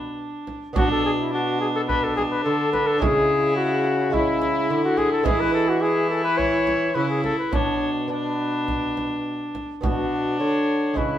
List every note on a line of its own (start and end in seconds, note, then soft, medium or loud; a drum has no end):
0.00 0.44 B2 medium
0.00 0.44 B2 soft
0.00 0.71 B3 soft
0.00 0.54 D4 medium
0.00 0.72 D4 soft
0.00 0.20 B4 medium
0.47 frame drum soft
0.73 2.42 B2 medium
0.73 2.47 B2 medium
0.73 2.97 B3 medium
0.73 2.97 D4 soft
0.73 1.29 D4 medium
0.73 2.98 F#4 medium
0.73 frame drum medium
0.77 0.90 F#4 loud
0.91 1.05 A4 medium
1.05 1.12 G#4 medium
1.20 1.33 E4 medium
1.33 1.88 D4 medium
1.33 1.60 F#4 medium
1.60 1.67 G#4 medium
1.76 1.82 A4 loud
1.88 3.04 D4 medium
1.88 2.05 B4 loud
1.88 frame drum medium
2.04 2.16 A4 medium
2.16 2.23 G#4 loud
2.16 frame drum soft
2.31 2.44 B4 medium
2.44 2.98 D3 medium
2.44 3.01 D3 medium
2.44 2.72 A4 loud
2.72 2.89 B4 loud
2.72 frame drum medium
2.87 3.00 A4 loud
2.98 4.72 C#3 medium
2.98 4.67 C#3 medium
2.98 4.09 G#3 medium
2.98 4.10 C#4 medium
2.98 4.11 E4 medium
2.98 4.14 E4 loud
2.98 3.56 G#4 loud
2.98 frame drum medium
3.56 4.15 F#4 loud
4.10 4.67 G#3 medium
4.10 5.22 C#4 medium
4.10 5.22 E4 medium
4.10 4.84 E4 loud
4.10 frame drum medium
4.15 5.24 E4 medium
4.42 frame drum medium
4.70 5.27 D3 medium
4.70 5.22 D3 medium
4.85 4.99 F#4 loud
4.97 5.12 G#4 loud
4.97 frame drum medium
5.12 5.27 A4 loud
5.23 6.95 E3 medium
5.23 6.92 E3 medium
5.23 6.90 G#3 medium
5.23 6.91 B3 medium
5.23 7.49 E4 medium
5.23 5.42 G#4 loud
5.23 frame drum medium
5.28 5.82 E4 loud
5.40 5.53 B4 loud
5.53 5.71 A4 loud
5.69 5.83 F#4 loud
5.82 6.94 E4 loud
5.82 6.09 G#4 medium
6.10 6.23 A4 medium
6.24 6.39 B4 loud
6.38 6.96 C#5 loud
6.38 frame drum soft
6.67 frame drum medium
6.95 7.29 C#3 medium
6.95 7.32 C#3 medium
6.95 7.57 E4 medium
6.95 7.09 B4 medium
7.10 7.24 G#4 medium
7.24 7.38 A4 loud
7.24 frame drum medium
7.39 7.54 B4 medium
7.51 9.51 B2 medium
7.51 8.07 B3 soft
7.51 8.08 D4 medium
7.51 8.12 D4 medium
7.51 7.91 C#5 loud
7.51 frame drum medium
8.08 9.78 B3 soft
8.08 9.79 D4 medium
8.08 9.22 B4 medium
8.13 9.62 D4 medium
8.68 frame drum medium
8.97 frame drum medium
9.55 frame drum soft
9.81 10.42 B2 medium
9.81 10.37 B2 soft
9.81 10.92 B3 soft
9.81 10.93 D4 soft
9.81 10.98 D4 medium
9.81 10.93 F#4 soft
9.81 10.37 F#4 medium
9.81 frame drum medium
10.40 10.93 D3 medium
10.40 10.98 D3 medium
10.40 10.99 C#5 medium
10.94 11.18 C#3 medium
10.94 11.18 C#3 soft
10.94 11.18 G#3 medium
10.94 11.18 C#4 soft
10.94 11.18 E4 soft
10.94 11.18 E4 medium
10.94 11.18 B4 medium
10.94 frame drum soft